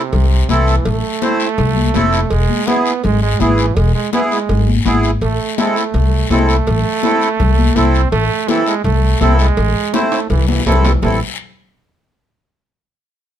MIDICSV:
0, 0, Header, 1, 5, 480
1, 0, Start_track
1, 0, Key_signature, 0, "minor"
1, 0, Tempo, 363196
1, 1134, Time_signature, 4, 2, 24, 8
1, 17707, End_track
2, 0, Start_track
2, 0, Title_t, "Accordion"
2, 0, Program_c, 0, 21
2, 652, Note_on_c, 0, 60, 78
2, 658, Note_on_c, 0, 64, 72
2, 663, Note_on_c, 0, 69, 96
2, 989, Note_off_c, 0, 60, 0
2, 992, Note_off_c, 0, 64, 0
2, 994, Note_off_c, 0, 69, 0
2, 1610, Note_on_c, 0, 60, 77
2, 1616, Note_on_c, 0, 64, 73
2, 1621, Note_on_c, 0, 72, 86
2, 1948, Note_off_c, 0, 60, 0
2, 1951, Note_off_c, 0, 64, 0
2, 1953, Note_off_c, 0, 72, 0
2, 2568, Note_on_c, 0, 60, 77
2, 2574, Note_on_c, 0, 64, 78
2, 2579, Note_on_c, 0, 69, 99
2, 2907, Note_off_c, 0, 60, 0
2, 2910, Note_off_c, 0, 64, 0
2, 2913, Note_off_c, 0, 69, 0
2, 3523, Note_on_c, 0, 59, 86
2, 3532, Note_on_c, 0, 64, 80
2, 3536, Note_on_c, 0, 68, 87
2, 3865, Note_off_c, 0, 59, 0
2, 3870, Note_off_c, 0, 64, 0
2, 3871, Note_off_c, 0, 68, 0
2, 4493, Note_on_c, 0, 59, 82
2, 4496, Note_on_c, 0, 64, 74
2, 4502, Note_on_c, 0, 68, 90
2, 4830, Note_off_c, 0, 59, 0
2, 4831, Note_off_c, 0, 64, 0
2, 4834, Note_off_c, 0, 68, 0
2, 5451, Note_on_c, 0, 59, 84
2, 5457, Note_on_c, 0, 64, 76
2, 5464, Note_on_c, 0, 68, 93
2, 5789, Note_off_c, 0, 59, 0
2, 5792, Note_off_c, 0, 64, 0
2, 5795, Note_off_c, 0, 68, 0
2, 6412, Note_on_c, 0, 59, 77
2, 6416, Note_on_c, 0, 64, 70
2, 6424, Note_on_c, 0, 68, 93
2, 6750, Note_off_c, 0, 59, 0
2, 6752, Note_off_c, 0, 64, 0
2, 6756, Note_off_c, 0, 68, 0
2, 7372, Note_on_c, 0, 60, 81
2, 7375, Note_on_c, 0, 64, 69
2, 7383, Note_on_c, 0, 69, 85
2, 7710, Note_off_c, 0, 60, 0
2, 7712, Note_off_c, 0, 64, 0
2, 7716, Note_off_c, 0, 69, 0
2, 8333, Note_on_c, 0, 60, 82
2, 8338, Note_on_c, 0, 64, 75
2, 8341, Note_on_c, 0, 69, 93
2, 8671, Note_off_c, 0, 60, 0
2, 8673, Note_off_c, 0, 64, 0
2, 8674, Note_off_c, 0, 69, 0
2, 9295, Note_on_c, 0, 60, 83
2, 9299, Note_on_c, 0, 64, 73
2, 9303, Note_on_c, 0, 69, 96
2, 9632, Note_off_c, 0, 60, 0
2, 9634, Note_off_c, 0, 64, 0
2, 9636, Note_off_c, 0, 69, 0
2, 10248, Note_on_c, 0, 60, 82
2, 10253, Note_on_c, 0, 64, 80
2, 10260, Note_on_c, 0, 69, 95
2, 10588, Note_off_c, 0, 60, 0
2, 10591, Note_off_c, 0, 64, 0
2, 10594, Note_off_c, 0, 69, 0
2, 11210, Note_on_c, 0, 60, 80
2, 11214, Note_on_c, 0, 64, 79
2, 11221, Note_on_c, 0, 69, 93
2, 11549, Note_off_c, 0, 60, 0
2, 11551, Note_off_c, 0, 64, 0
2, 11554, Note_off_c, 0, 69, 0
2, 12167, Note_on_c, 0, 60, 87
2, 12170, Note_on_c, 0, 64, 76
2, 12174, Note_on_c, 0, 69, 97
2, 12507, Note_off_c, 0, 60, 0
2, 12509, Note_off_c, 0, 64, 0
2, 12511, Note_off_c, 0, 69, 0
2, 13128, Note_on_c, 0, 60, 83
2, 13134, Note_on_c, 0, 64, 76
2, 13139, Note_on_c, 0, 72, 88
2, 13468, Note_off_c, 0, 60, 0
2, 13471, Note_off_c, 0, 64, 0
2, 13474, Note_off_c, 0, 72, 0
2, 14092, Note_on_c, 0, 60, 77
2, 14095, Note_on_c, 0, 64, 80
2, 14101, Note_on_c, 0, 69, 93
2, 14430, Note_off_c, 0, 60, 0
2, 14431, Note_off_c, 0, 64, 0
2, 14434, Note_off_c, 0, 69, 0
2, 14577, Note_on_c, 0, 60, 88
2, 14577, Note_on_c, 0, 64, 77
2, 14577, Note_on_c, 0, 69, 83
2, 14799, Note_off_c, 0, 60, 0
2, 14799, Note_off_c, 0, 69, 0
2, 14800, Note_off_c, 0, 64, 0
2, 17707, End_track
3, 0, Start_track
3, 0, Title_t, "Trombone"
3, 0, Program_c, 1, 57
3, 0, Note_on_c, 1, 48, 91
3, 653, Note_on_c, 1, 52, 83
3, 672, Note_off_c, 1, 48, 0
3, 1133, Note_on_c, 1, 57, 101
3, 1152, Note_off_c, 1, 52, 0
3, 3054, Note_on_c, 1, 56, 102
3, 3074, Note_off_c, 1, 57, 0
3, 3530, Note_on_c, 1, 59, 102
3, 3550, Note_off_c, 1, 56, 0
3, 4012, Note_off_c, 1, 59, 0
3, 4020, Note_on_c, 1, 56, 103
3, 4241, Note_off_c, 1, 56, 0
3, 4257, Note_on_c, 1, 56, 109
3, 4501, Note_on_c, 1, 52, 98
3, 4521, Note_off_c, 1, 56, 0
3, 4977, Note_on_c, 1, 56, 104
3, 4997, Note_off_c, 1, 52, 0
3, 5208, Note_off_c, 1, 56, 0
3, 5216, Note_on_c, 1, 56, 97
3, 5439, Note_off_c, 1, 56, 0
3, 5464, Note_on_c, 1, 59, 95
3, 5570, Note_off_c, 1, 59, 0
3, 5698, Note_on_c, 1, 56, 91
3, 6259, Note_off_c, 1, 56, 0
3, 6904, Note_on_c, 1, 57, 94
3, 7376, Note_on_c, 1, 56, 94
3, 7396, Note_off_c, 1, 57, 0
3, 7629, Note_on_c, 1, 57, 88
3, 7649, Note_off_c, 1, 56, 0
3, 8342, Note_on_c, 1, 56, 88
3, 8362, Note_off_c, 1, 57, 0
3, 8573, Note_on_c, 1, 57, 109
3, 8593, Note_off_c, 1, 56, 0
3, 10259, Note_on_c, 1, 60, 104
3, 10279, Note_off_c, 1, 57, 0
3, 10722, Note_off_c, 1, 60, 0
3, 10730, Note_on_c, 1, 57, 112
3, 11216, Note_on_c, 1, 52, 99
3, 11235, Note_off_c, 1, 57, 0
3, 11448, Note_off_c, 1, 52, 0
3, 11456, Note_on_c, 1, 56, 96
3, 11680, Note_off_c, 1, 56, 0
3, 11691, Note_on_c, 1, 57, 95
3, 12176, Note_on_c, 1, 60, 104
3, 12195, Note_off_c, 1, 57, 0
3, 12417, Note_on_c, 1, 56, 105
3, 12437, Note_off_c, 1, 60, 0
3, 13141, Note_on_c, 1, 57, 90
3, 13160, Note_off_c, 1, 56, 0
3, 13608, Note_off_c, 1, 57, 0
3, 13616, Note_on_c, 1, 52, 86
3, 13839, Note_off_c, 1, 52, 0
3, 13860, Note_on_c, 1, 52, 85
3, 14081, Note_off_c, 1, 52, 0
3, 14101, Note_on_c, 1, 52, 80
3, 14322, Note_off_c, 1, 52, 0
3, 14346, Note_on_c, 1, 52, 70
3, 14564, Note_off_c, 1, 52, 0
3, 14582, Note_on_c, 1, 52, 69
3, 14802, Note_off_c, 1, 52, 0
3, 17707, End_track
4, 0, Start_track
4, 0, Title_t, "Upright bass"
4, 0, Program_c, 2, 32
4, 169, Note_on_c, 2, 36, 94
4, 555, Note_off_c, 2, 36, 0
4, 646, Note_on_c, 2, 36, 92
4, 1033, Note_off_c, 2, 36, 0
4, 1126, Note_on_c, 2, 33, 96
4, 1321, Note_off_c, 2, 33, 0
4, 2089, Note_on_c, 2, 36, 103
4, 2475, Note_off_c, 2, 36, 0
4, 2572, Note_on_c, 2, 29, 97
4, 2957, Note_off_c, 2, 29, 0
4, 3057, Note_on_c, 2, 28, 92
4, 3248, Note_off_c, 2, 28, 0
4, 4023, Note_on_c, 2, 32, 99
4, 4404, Note_off_c, 2, 32, 0
4, 4498, Note_on_c, 2, 32, 93
4, 4881, Note_off_c, 2, 32, 0
4, 4977, Note_on_c, 2, 28, 102
4, 5168, Note_off_c, 2, 28, 0
4, 5936, Note_on_c, 2, 32, 100
4, 6320, Note_off_c, 2, 32, 0
4, 6415, Note_on_c, 2, 32, 89
4, 6800, Note_off_c, 2, 32, 0
4, 6890, Note_on_c, 2, 33, 97
4, 7084, Note_off_c, 2, 33, 0
4, 7848, Note_on_c, 2, 36, 100
4, 8235, Note_off_c, 2, 36, 0
4, 8328, Note_on_c, 2, 36, 92
4, 8715, Note_off_c, 2, 36, 0
4, 8817, Note_on_c, 2, 33, 96
4, 9009, Note_off_c, 2, 33, 0
4, 9777, Note_on_c, 2, 36, 99
4, 10161, Note_off_c, 2, 36, 0
4, 10255, Note_on_c, 2, 36, 96
4, 10640, Note_off_c, 2, 36, 0
4, 10733, Note_on_c, 2, 33, 96
4, 10926, Note_off_c, 2, 33, 0
4, 11686, Note_on_c, 2, 36, 99
4, 12074, Note_off_c, 2, 36, 0
4, 12170, Note_on_c, 2, 36, 101
4, 12557, Note_off_c, 2, 36, 0
4, 12652, Note_on_c, 2, 33, 103
4, 12846, Note_off_c, 2, 33, 0
4, 13611, Note_on_c, 2, 36, 98
4, 13997, Note_off_c, 2, 36, 0
4, 14090, Note_on_c, 2, 36, 92
4, 14476, Note_off_c, 2, 36, 0
4, 14575, Note_on_c, 2, 33, 96
4, 14798, Note_off_c, 2, 33, 0
4, 17707, End_track
5, 0, Start_track
5, 0, Title_t, "Drums"
5, 166, Note_on_c, 9, 56, 87
5, 169, Note_on_c, 9, 74, 76
5, 179, Note_on_c, 9, 63, 33
5, 179, Note_on_c, 9, 64, 79
5, 298, Note_off_c, 9, 56, 0
5, 301, Note_off_c, 9, 74, 0
5, 311, Note_off_c, 9, 63, 0
5, 311, Note_off_c, 9, 64, 0
5, 651, Note_on_c, 9, 56, 67
5, 651, Note_on_c, 9, 73, 70
5, 654, Note_on_c, 9, 63, 87
5, 783, Note_off_c, 9, 56, 0
5, 783, Note_off_c, 9, 73, 0
5, 786, Note_off_c, 9, 63, 0
5, 889, Note_on_c, 9, 73, 73
5, 1021, Note_off_c, 9, 73, 0
5, 1129, Note_on_c, 9, 56, 105
5, 1131, Note_on_c, 9, 74, 68
5, 1135, Note_on_c, 9, 63, 34
5, 1135, Note_on_c, 9, 64, 64
5, 1261, Note_off_c, 9, 56, 0
5, 1263, Note_off_c, 9, 74, 0
5, 1267, Note_off_c, 9, 63, 0
5, 1267, Note_off_c, 9, 64, 0
5, 1607, Note_on_c, 9, 56, 67
5, 1610, Note_on_c, 9, 73, 66
5, 1612, Note_on_c, 9, 63, 96
5, 1739, Note_off_c, 9, 56, 0
5, 1742, Note_off_c, 9, 73, 0
5, 1745, Note_off_c, 9, 63, 0
5, 1849, Note_on_c, 9, 73, 74
5, 1981, Note_off_c, 9, 73, 0
5, 2087, Note_on_c, 9, 74, 75
5, 2089, Note_on_c, 9, 56, 81
5, 2096, Note_on_c, 9, 63, 32
5, 2096, Note_on_c, 9, 64, 85
5, 2220, Note_off_c, 9, 74, 0
5, 2221, Note_off_c, 9, 56, 0
5, 2228, Note_off_c, 9, 63, 0
5, 2228, Note_off_c, 9, 64, 0
5, 2335, Note_on_c, 9, 63, 69
5, 2467, Note_off_c, 9, 63, 0
5, 2566, Note_on_c, 9, 56, 67
5, 2566, Note_on_c, 9, 66, 68
5, 2572, Note_on_c, 9, 73, 75
5, 2574, Note_on_c, 9, 63, 93
5, 2698, Note_off_c, 9, 56, 0
5, 2698, Note_off_c, 9, 66, 0
5, 2704, Note_off_c, 9, 73, 0
5, 2706, Note_off_c, 9, 63, 0
5, 2812, Note_on_c, 9, 73, 73
5, 2944, Note_off_c, 9, 73, 0
5, 3046, Note_on_c, 9, 56, 93
5, 3050, Note_on_c, 9, 74, 77
5, 3178, Note_off_c, 9, 56, 0
5, 3182, Note_off_c, 9, 74, 0
5, 3299, Note_on_c, 9, 63, 74
5, 3431, Note_off_c, 9, 63, 0
5, 3528, Note_on_c, 9, 56, 72
5, 3531, Note_on_c, 9, 73, 66
5, 3538, Note_on_c, 9, 63, 105
5, 3660, Note_off_c, 9, 56, 0
5, 3663, Note_off_c, 9, 73, 0
5, 3670, Note_off_c, 9, 63, 0
5, 3775, Note_on_c, 9, 73, 75
5, 3907, Note_off_c, 9, 73, 0
5, 4012, Note_on_c, 9, 56, 81
5, 4016, Note_on_c, 9, 74, 73
5, 4019, Note_on_c, 9, 63, 34
5, 4019, Note_on_c, 9, 64, 83
5, 4144, Note_off_c, 9, 56, 0
5, 4148, Note_off_c, 9, 74, 0
5, 4151, Note_off_c, 9, 63, 0
5, 4151, Note_off_c, 9, 64, 0
5, 4494, Note_on_c, 9, 73, 72
5, 4495, Note_on_c, 9, 56, 63
5, 4498, Note_on_c, 9, 63, 91
5, 4626, Note_off_c, 9, 73, 0
5, 4627, Note_off_c, 9, 56, 0
5, 4630, Note_off_c, 9, 63, 0
5, 4730, Note_on_c, 9, 73, 74
5, 4863, Note_off_c, 9, 73, 0
5, 4975, Note_on_c, 9, 74, 66
5, 4977, Note_on_c, 9, 56, 103
5, 4977, Note_on_c, 9, 63, 34
5, 5107, Note_off_c, 9, 74, 0
5, 5109, Note_off_c, 9, 63, 0
5, 5110, Note_off_c, 9, 56, 0
5, 5455, Note_on_c, 9, 73, 66
5, 5456, Note_on_c, 9, 56, 74
5, 5458, Note_on_c, 9, 63, 102
5, 5587, Note_off_c, 9, 73, 0
5, 5589, Note_off_c, 9, 56, 0
5, 5590, Note_off_c, 9, 63, 0
5, 5700, Note_on_c, 9, 73, 71
5, 5832, Note_off_c, 9, 73, 0
5, 5937, Note_on_c, 9, 56, 88
5, 5940, Note_on_c, 9, 74, 71
5, 5941, Note_on_c, 9, 63, 33
5, 5941, Note_on_c, 9, 64, 81
5, 6069, Note_off_c, 9, 56, 0
5, 6072, Note_off_c, 9, 74, 0
5, 6073, Note_off_c, 9, 63, 0
5, 6073, Note_off_c, 9, 64, 0
5, 6179, Note_on_c, 9, 63, 70
5, 6311, Note_off_c, 9, 63, 0
5, 6417, Note_on_c, 9, 63, 91
5, 6418, Note_on_c, 9, 73, 70
5, 6420, Note_on_c, 9, 56, 66
5, 6420, Note_on_c, 9, 66, 65
5, 6549, Note_off_c, 9, 63, 0
5, 6550, Note_off_c, 9, 73, 0
5, 6552, Note_off_c, 9, 56, 0
5, 6552, Note_off_c, 9, 66, 0
5, 6652, Note_on_c, 9, 73, 72
5, 6784, Note_off_c, 9, 73, 0
5, 6890, Note_on_c, 9, 74, 71
5, 6897, Note_on_c, 9, 56, 94
5, 7022, Note_off_c, 9, 74, 0
5, 7029, Note_off_c, 9, 56, 0
5, 7375, Note_on_c, 9, 73, 72
5, 7376, Note_on_c, 9, 63, 104
5, 7381, Note_on_c, 9, 56, 71
5, 7507, Note_off_c, 9, 73, 0
5, 7508, Note_off_c, 9, 63, 0
5, 7513, Note_off_c, 9, 56, 0
5, 7617, Note_on_c, 9, 73, 76
5, 7749, Note_off_c, 9, 73, 0
5, 7852, Note_on_c, 9, 74, 73
5, 7854, Note_on_c, 9, 63, 33
5, 7854, Note_on_c, 9, 64, 75
5, 7857, Note_on_c, 9, 56, 87
5, 7984, Note_off_c, 9, 74, 0
5, 7986, Note_off_c, 9, 63, 0
5, 7986, Note_off_c, 9, 64, 0
5, 7990, Note_off_c, 9, 56, 0
5, 8331, Note_on_c, 9, 73, 73
5, 8333, Note_on_c, 9, 63, 87
5, 8339, Note_on_c, 9, 56, 69
5, 8339, Note_on_c, 9, 66, 74
5, 8463, Note_off_c, 9, 73, 0
5, 8465, Note_off_c, 9, 63, 0
5, 8471, Note_off_c, 9, 56, 0
5, 8471, Note_off_c, 9, 66, 0
5, 8575, Note_on_c, 9, 73, 73
5, 8707, Note_off_c, 9, 73, 0
5, 8813, Note_on_c, 9, 74, 71
5, 8815, Note_on_c, 9, 63, 32
5, 8815, Note_on_c, 9, 64, 68
5, 8820, Note_on_c, 9, 56, 93
5, 8946, Note_off_c, 9, 74, 0
5, 8947, Note_off_c, 9, 63, 0
5, 8947, Note_off_c, 9, 64, 0
5, 8952, Note_off_c, 9, 56, 0
5, 9293, Note_on_c, 9, 63, 100
5, 9293, Note_on_c, 9, 73, 66
5, 9299, Note_on_c, 9, 56, 69
5, 9425, Note_off_c, 9, 63, 0
5, 9425, Note_off_c, 9, 73, 0
5, 9431, Note_off_c, 9, 56, 0
5, 9535, Note_on_c, 9, 73, 70
5, 9668, Note_off_c, 9, 73, 0
5, 9775, Note_on_c, 9, 74, 74
5, 9777, Note_on_c, 9, 56, 81
5, 9782, Note_on_c, 9, 63, 34
5, 9782, Note_on_c, 9, 64, 82
5, 9907, Note_off_c, 9, 74, 0
5, 9910, Note_off_c, 9, 56, 0
5, 9914, Note_off_c, 9, 63, 0
5, 9914, Note_off_c, 9, 64, 0
5, 10018, Note_on_c, 9, 63, 72
5, 10150, Note_off_c, 9, 63, 0
5, 10254, Note_on_c, 9, 63, 90
5, 10256, Note_on_c, 9, 73, 71
5, 10258, Note_on_c, 9, 56, 68
5, 10386, Note_off_c, 9, 63, 0
5, 10388, Note_off_c, 9, 73, 0
5, 10390, Note_off_c, 9, 56, 0
5, 10499, Note_on_c, 9, 73, 68
5, 10631, Note_off_c, 9, 73, 0
5, 10735, Note_on_c, 9, 74, 68
5, 10737, Note_on_c, 9, 56, 100
5, 10867, Note_off_c, 9, 74, 0
5, 10869, Note_off_c, 9, 56, 0
5, 11213, Note_on_c, 9, 56, 75
5, 11213, Note_on_c, 9, 73, 67
5, 11217, Note_on_c, 9, 63, 96
5, 11345, Note_off_c, 9, 73, 0
5, 11346, Note_off_c, 9, 56, 0
5, 11349, Note_off_c, 9, 63, 0
5, 11452, Note_on_c, 9, 73, 73
5, 11584, Note_off_c, 9, 73, 0
5, 11690, Note_on_c, 9, 74, 77
5, 11696, Note_on_c, 9, 56, 79
5, 11698, Note_on_c, 9, 63, 34
5, 11698, Note_on_c, 9, 64, 82
5, 11822, Note_off_c, 9, 74, 0
5, 11828, Note_off_c, 9, 56, 0
5, 11830, Note_off_c, 9, 63, 0
5, 11830, Note_off_c, 9, 64, 0
5, 12170, Note_on_c, 9, 73, 66
5, 12172, Note_on_c, 9, 63, 92
5, 12177, Note_on_c, 9, 56, 70
5, 12177, Note_on_c, 9, 66, 70
5, 12303, Note_off_c, 9, 73, 0
5, 12304, Note_off_c, 9, 63, 0
5, 12309, Note_off_c, 9, 56, 0
5, 12309, Note_off_c, 9, 66, 0
5, 12412, Note_on_c, 9, 73, 75
5, 12544, Note_off_c, 9, 73, 0
5, 12649, Note_on_c, 9, 74, 75
5, 12651, Note_on_c, 9, 56, 94
5, 12656, Note_on_c, 9, 63, 35
5, 12781, Note_off_c, 9, 74, 0
5, 12783, Note_off_c, 9, 56, 0
5, 12789, Note_off_c, 9, 63, 0
5, 13133, Note_on_c, 9, 56, 73
5, 13133, Note_on_c, 9, 65, 79
5, 13135, Note_on_c, 9, 63, 100
5, 13136, Note_on_c, 9, 73, 65
5, 13265, Note_off_c, 9, 56, 0
5, 13265, Note_off_c, 9, 65, 0
5, 13267, Note_off_c, 9, 63, 0
5, 13268, Note_off_c, 9, 73, 0
5, 13373, Note_on_c, 9, 65, 92
5, 13375, Note_on_c, 9, 73, 70
5, 13505, Note_off_c, 9, 65, 0
5, 13507, Note_off_c, 9, 73, 0
5, 13611, Note_on_c, 9, 74, 78
5, 13617, Note_on_c, 9, 56, 86
5, 13617, Note_on_c, 9, 63, 32
5, 13617, Note_on_c, 9, 64, 88
5, 13743, Note_off_c, 9, 74, 0
5, 13749, Note_off_c, 9, 56, 0
5, 13749, Note_off_c, 9, 63, 0
5, 13749, Note_off_c, 9, 64, 0
5, 13856, Note_on_c, 9, 63, 92
5, 13988, Note_off_c, 9, 63, 0
5, 14009, Note_on_c, 9, 63, 74
5, 14091, Note_on_c, 9, 73, 69
5, 14099, Note_on_c, 9, 56, 68
5, 14099, Note_on_c, 9, 66, 90
5, 14142, Note_off_c, 9, 63, 0
5, 14168, Note_on_c, 9, 64, 115
5, 14224, Note_off_c, 9, 73, 0
5, 14232, Note_off_c, 9, 56, 0
5, 14232, Note_off_c, 9, 66, 0
5, 14300, Note_off_c, 9, 64, 0
5, 14330, Note_on_c, 9, 64, 82
5, 14334, Note_on_c, 9, 73, 74
5, 14338, Note_on_c, 9, 66, 105
5, 14462, Note_off_c, 9, 64, 0
5, 14466, Note_off_c, 9, 73, 0
5, 14470, Note_off_c, 9, 66, 0
5, 14567, Note_on_c, 9, 64, 94
5, 14572, Note_on_c, 9, 74, 102
5, 14576, Note_on_c, 9, 66, 97
5, 14700, Note_off_c, 9, 64, 0
5, 14705, Note_off_c, 9, 74, 0
5, 14709, Note_off_c, 9, 66, 0
5, 17707, End_track
0, 0, End_of_file